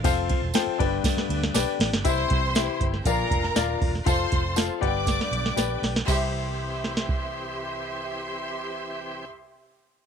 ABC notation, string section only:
X:1
M:4/4
L:1/8
Q:1/4=119
K:C
V:1 name="String section"
z8 | [cc']3 z [_B_b]3 z | [cc']2 z [dd']4 z | [Gec']8- |
[Gec']8 |]